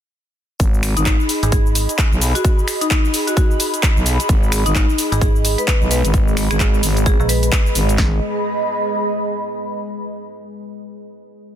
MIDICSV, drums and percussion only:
0, 0, Header, 1, 2, 480
1, 0, Start_track
1, 0, Key_signature, 5, "minor"
1, 0, Tempo, 461538
1, 622, Time_signature, 4, 2, 24, 8
1, 12016, End_track
2, 0, Start_track
2, 0, Title_t, "Drums"
2, 623, Note_on_c, 9, 36, 119
2, 623, Note_on_c, 9, 42, 68
2, 627, Note_on_c, 9, 82, 44
2, 727, Note_off_c, 9, 36, 0
2, 727, Note_off_c, 9, 42, 0
2, 731, Note_off_c, 9, 82, 0
2, 770, Note_on_c, 9, 82, 23
2, 862, Note_on_c, 9, 26, 64
2, 862, Note_on_c, 9, 46, 107
2, 866, Note_off_c, 9, 82, 0
2, 866, Note_on_c, 9, 82, 80
2, 966, Note_off_c, 9, 26, 0
2, 966, Note_off_c, 9, 46, 0
2, 970, Note_off_c, 9, 82, 0
2, 1005, Note_on_c, 9, 42, 53
2, 1009, Note_on_c, 9, 82, 33
2, 1102, Note_off_c, 9, 42, 0
2, 1102, Note_on_c, 9, 42, 66
2, 1103, Note_on_c, 9, 36, 122
2, 1104, Note_on_c, 9, 39, 114
2, 1106, Note_off_c, 9, 82, 0
2, 1106, Note_on_c, 9, 82, 42
2, 1206, Note_off_c, 9, 42, 0
2, 1207, Note_off_c, 9, 36, 0
2, 1208, Note_off_c, 9, 39, 0
2, 1210, Note_off_c, 9, 82, 0
2, 1250, Note_on_c, 9, 82, 22
2, 1342, Note_on_c, 9, 46, 90
2, 1346, Note_off_c, 9, 82, 0
2, 1346, Note_on_c, 9, 82, 77
2, 1446, Note_off_c, 9, 46, 0
2, 1450, Note_off_c, 9, 82, 0
2, 1486, Note_on_c, 9, 42, 54
2, 1490, Note_on_c, 9, 82, 35
2, 1582, Note_off_c, 9, 42, 0
2, 1582, Note_on_c, 9, 42, 69
2, 1583, Note_on_c, 9, 36, 124
2, 1586, Note_off_c, 9, 82, 0
2, 1586, Note_on_c, 9, 82, 45
2, 1686, Note_off_c, 9, 42, 0
2, 1687, Note_off_c, 9, 36, 0
2, 1690, Note_off_c, 9, 82, 0
2, 1730, Note_on_c, 9, 82, 23
2, 1823, Note_on_c, 9, 46, 107
2, 1827, Note_off_c, 9, 82, 0
2, 1827, Note_on_c, 9, 82, 77
2, 1927, Note_off_c, 9, 46, 0
2, 1931, Note_off_c, 9, 82, 0
2, 1967, Note_on_c, 9, 42, 54
2, 1971, Note_on_c, 9, 82, 33
2, 2063, Note_off_c, 9, 42, 0
2, 2063, Note_on_c, 9, 36, 126
2, 2063, Note_on_c, 9, 42, 70
2, 2066, Note_on_c, 9, 39, 123
2, 2067, Note_off_c, 9, 82, 0
2, 2067, Note_on_c, 9, 82, 45
2, 2167, Note_off_c, 9, 36, 0
2, 2167, Note_off_c, 9, 42, 0
2, 2170, Note_off_c, 9, 39, 0
2, 2171, Note_off_c, 9, 82, 0
2, 2211, Note_on_c, 9, 82, 22
2, 2303, Note_on_c, 9, 46, 86
2, 2307, Note_off_c, 9, 82, 0
2, 2307, Note_on_c, 9, 82, 78
2, 2407, Note_off_c, 9, 46, 0
2, 2411, Note_off_c, 9, 82, 0
2, 2447, Note_on_c, 9, 42, 56
2, 2451, Note_on_c, 9, 82, 33
2, 2543, Note_off_c, 9, 42, 0
2, 2543, Note_on_c, 9, 36, 124
2, 2543, Note_on_c, 9, 42, 66
2, 2547, Note_off_c, 9, 82, 0
2, 2547, Note_on_c, 9, 82, 43
2, 2647, Note_off_c, 9, 36, 0
2, 2647, Note_off_c, 9, 42, 0
2, 2651, Note_off_c, 9, 82, 0
2, 2691, Note_on_c, 9, 82, 21
2, 2783, Note_on_c, 9, 26, 62
2, 2783, Note_on_c, 9, 46, 105
2, 2787, Note_off_c, 9, 82, 0
2, 2787, Note_on_c, 9, 82, 76
2, 2887, Note_off_c, 9, 26, 0
2, 2887, Note_off_c, 9, 46, 0
2, 2891, Note_off_c, 9, 82, 0
2, 2927, Note_on_c, 9, 42, 53
2, 2930, Note_on_c, 9, 82, 30
2, 3023, Note_off_c, 9, 42, 0
2, 3023, Note_on_c, 9, 36, 125
2, 3023, Note_on_c, 9, 42, 65
2, 3026, Note_on_c, 9, 39, 119
2, 3027, Note_off_c, 9, 82, 0
2, 3027, Note_on_c, 9, 82, 44
2, 3127, Note_off_c, 9, 36, 0
2, 3127, Note_off_c, 9, 42, 0
2, 3130, Note_off_c, 9, 39, 0
2, 3131, Note_off_c, 9, 82, 0
2, 3171, Note_on_c, 9, 82, 21
2, 3263, Note_on_c, 9, 46, 100
2, 3267, Note_off_c, 9, 82, 0
2, 3267, Note_on_c, 9, 82, 76
2, 3367, Note_off_c, 9, 46, 0
2, 3371, Note_off_c, 9, 82, 0
2, 3407, Note_on_c, 9, 42, 54
2, 3410, Note_on_c, 9, 82, 33
2, 3503, Note_off_c, 9, 42, 0
2, 3503, Note_on_c, 9, 36, 127
2, 3503, Note_on_c, 9, 42, 64
2, 3507, Note_off_c, 9, 82, 0
2, 3507, Note_on_c, 9, 82, 43
2, 3607, Note_off_c, 9, 36, 0
2, 3607, Note_off_c, 9, 42, 0
2, 3611, Note_off_c, 9, 82, 0
2, 3651, Note_on_c, 9, 82, 22
2, 3742, Note_on_c, 9, 46, 117
2, 3746, Note_off_c, 9, 82, 0
2, 3746, Note_on_c, 9, 82, 80
2, 3846, Note_off_c, 9, 46, 0
2, 3850, Note_off_c, 9, 82, 0
2, 3886, Note_on_c, 9, 42, 53
2, 3890, Note_on_c, 9, 82, 31
2, 3983, Note_off_c, 9, 42, 0
2, 3983, Note_on_c, 9, 36, 127
2, 3983, Note_on_c, 9, 42, 68
2, 3985, Note_on_c, 9, 39, 127
2, 3987, Note_off_c, 9, 82, 0
2, 3987, Note_on_c, 9, 82, 44
2, 4087, Note_off_c, 9, 36, 0
2, 4087, Note_off_c, 9, 42, 0
2, 4089, Note_off_c, 9, 39, 0
2, 4091, Note_off_c, 9, 82, 0
2, 4130, Note_on_c, 9, 82, 22
2, 4222, Note_on_c, 9, 46, 92
2, 4226, Note_off_c, 9, 82, 0
2, 4226, Note_on_c, 9, 82, 78
2, 4326, Note_off_c, 9, 46, 0
2, 4330, Note_off_c, 9, 82, 0
2, 4366, Note_on_c, 9, 42, 54
2, 4370, Note_on_c, 9, 82, 33
2, 4462, Note_off_c, 9, 42, 0
2, 4462, Note_on_c, 9, 42, 66
2, 4463, Note_on_c, 9, 36, 127
2, 4466, Note_off_c, 9, 82, 0
2, 4466, Note_on_c, 9, 82, 42
2, 4566, Note_off_c, 9, 42, 0
2, 4567, Note_off_c, 9, 36, 0
2, 4570, Note_off_c, 9, 82, 0
2, 4610, Note_on_c, 9, 82, 22
2, 4701, Note_on_c, 9, 26, 66
2, 4701, Note_on_c, 9, 46, 113
2, 4705, Note_off_c, 9, 82, 0
2, 4705, Note_on_c, 9, 82, 74
2, 4805, Note_off_c, 9, 26, 0
2, 4805, Note_off_c, 9, 46, 0
2, 4809, Note_off_c, 9, 82, 0
2, 4846, Note_on_c, 9, 42, 49
2, 4850, Note_on_c, 9, 82, 31
2, 4943, Note_off_c, 9, 42, 0
2, 4943, Note_on_c, 9, 36, 126
2, 4943, Note_on_c, 9, 42, 63
2, 4945, Note_on_c, 9, 39, 120
2, 4947, Note_off_c, 9, 82, 0
2, 4947, Note_on_c, 9, 82, 43
2, 5047, Note_off_c, 9, 36, 0
2, 5047, Note_off_c, 9, 42, 0
2, 5049, Note_off_c, 9, 39, 0
2, 5051, Note_off_c, 9, 82, 0
2, 5091, Note_on_c, 9, 82, 21
2, 5183, Note_on_c, 9, 46, 102
2, 5187, Note_off_c, 9, 82, 0
2, 5187, Note_on_c, 9, 82, 79
2, 5287, Note_off_c, 9, 46, 0
2, 5291, Note_off_c, 9, 82, 0
2, 5328, Note_on_c, 9, 42, 53
2, 5331, Note_on_c, 9, 82, 34
2, 5423, Note_on_c, 9, 36, 127
2, 5424, Note_off_c, 9, 42, 0
2, 5424, Note_on_c, 9, 42, 62
2, 5428, Note_off_c, 9, 82, 0
2, 5428, Note_on_c, 9, 82, 41
2, 5527, Note_off_c, 9, 36, 0
2, 5528, Note_off_c, 9, 42, 0
2, 5532, Note_off_c, 9, 82, 0
2, 5572, Note_on_c, 9, 82, 22
2, 5665, Note_on_c, 9, 46, 115
2, 5669, Note_off_c, 9, 82, 0
2, 5669, Note_on_c, 9, 82, 79
2, 5769, Note_off_c, 9, 46, 0
2, 5773, Note_off_c, 9, 82, 0
2, 5807, Note_on_c, 9, 42, 48
2, 5811, Note_on_c, 9, 82, 31
2, 5903, Note_on_c, 9, 36, 127
2, 5904, Note_off_c, 9, 42, 0
2, 5904, Note_on_c, 9, 42, 66
2, 5906, Note_on_c, 9, 39, 123
2, 5908, Note_off_c, 9, 82, 0
2, 5908, Note_on_c, 9, 82, 44
2, 6007, Note_off_c, 9, 36, 0
2, 6008, Note_off_c, 9, 42, 0
2, 6010, Note_off_c, 9, 39, 0
2, 6012, Note_off_c, 9, 82, 0
2, 6052, Note_on_c, 9, 82, 22
2, 6144, Note_on_c, 9, 46, 95
2, 6148, Note_off_c, 9, 82, 0
2, 6148, Note_on_c, 9, 82, 73
2, 6248, Note_off_c, 9, 46, 0
2, 6252, Note_off_c, 9, 82, 0
2, 6288, Note_on_c, 9, 42, 52
2, 6291, Note_on_c, 9, 82, 32
2, 6383, Note_on_c, 9, 36, 127
2, 6384, Note_off_c, 9, 42, 0
2, 6384, Note_on_c, 9, 42, 62
2, 6388, Note_off_c, 9, 82, 0
2, 6388, Note_on_c, 9, 82, 43
2, 6487, Note_off_c, 9, 36, 0
2, 6488, Note_off_c, 9, 42, 0
2, 6492, Note_off_c, 9, 82, 0
2, 6531, Note_on_c, 9, 82, 21
2, 6624, Note_on_c, 9, 26, 66
2, 6624, Note_on_c, 9, 46, 110
2, 6628, Note_off_c, 9, 82, 0
2, 6628, Note_on_c, 9, 82, 73
2, 6728, Note_off_c, 9, 26, 0
2, 6728, Note_off_c, 9, 46, 0
2, 6732, Note_off_c, 9, 82, 0
2, 6768, Note_on_c, 9, 26, 60
2, 6768, Note_on_c, 9, 42, 50
2, 6772, Note_on_c, 9, 82, 32
2, 6863, Note_on_c, 9, 36, 121
2, 6864, Note_off_c, 9, 42, 0
2, 6864, Note_on_c, 9, 42, 61
2, 6866, Note_on_c, 9, 39, 113
2, 6868, Note_off_c, 9, 82, 0
2, 6868, Note_on_c, 9, 82, 42
2, 6872, Note_off_c, 9, 26, 0
2, 6967, Note_off_c, 9, 36, 0
2, 6968, Note_off_c, 9, 42, 0
2, 6970, Note_off_c, 9, 39, 0
2, 6972, Note_off_c, 9, 82, 0
2, 7011, Note_on_c, 9, 82, 23
2, 7103, Note_on_c, 9, 46, 96
2, 7107, Note_off_c, 9, 82, 0
2, 7107, Note_on_c, 9, 82, 81
2, 7207, Note_off_c, 9, 46, 0
2, 7211, Note_off_c, 9, 82, 0
2, 7246, Note_on_c, 9, 42, 52
2, 7250, Note_on_c, 9, 82, 32
2, 7343, Note_off_c, 9, 42, 0
2, 7343, Note_on_c, 9, 36, 127
2, 7343, Note_on_c, 9, 42, 64
2, 7346, Note_off_c, 9, 82, 0
2, 7346, Note_on_c, 9, 82, 45
2, 7447, Note_off_c, 9, 36, 0
2, 7447, Note_off_c, 9, 42, 0
2, 7450, Note_off_c, 9, 82, 0
2, 7491, Note_on_c, 9, 82, 23
2, 7583, Note_on_c, 9, 46, 115
2, 7587, Note_off_c, 9, 82, 0
2, 7587, Note_on_c, 9, 82, 81
2, 7687, Note_off_c, 9, 46, 0
2, 7691, Note_off_c, 9, 82, 0
2, 7726, Note_on_c, 9, 42, 48
2, 7730, Note_on_c, 9, 82, 32
2, 7823, Note_on_c, 9, 36, 127
2, 7824, Note_off_c, 9, 42, 0
2, 7824, Note_on_c, 9, 42, 62
2, 7826, Note_on_c, 9, 39, 124
2, 7827, Note_off_c, 9, 82, 0
2, 7827, Note_on_c, 9, 82, 45
2, 7927, Note_off_c, 9, 36, 0
2, 7928, Note_off_c, 9, 42, 0
2, 7930, Note_off_c, 9, 39, 0
2, 7931, Note_off_c, 9, 82, 0
2, 7971, Note_on_c, 9, 82, 22
2, 8063, Note_on_c, 9, 46, 94
2, 8067, Note_off_c, 9, 82, 0
2, 8067, Note_on_c, 9, 82, 75
2, 8167, Note_off_c, 9, 46, 0
2, 8171, Note_off_c, 9, 82, 0
2, 8207, Note_on_c, 9, 42, 49
2, 8211, Note_on_c, 9, 82, 33
2, 8303, Note_on_c, 9, 36, 104
2, 8303, Note_on_c, 9, 38, 109
2, 8303, Note_on_c, 9, 39, 91
2, 8311, Note_off_c, 9, 42, 0
2, 8315, Note_off_c, 9, 82, 0
2, 8407, Note_off_c, 9, 36, 0
2, 8407, Note_off_c, 9, 38, 0
2, 8407, Note_off_c, 9, 39, 0
2, 12016, End_track
0, 0, End_of_file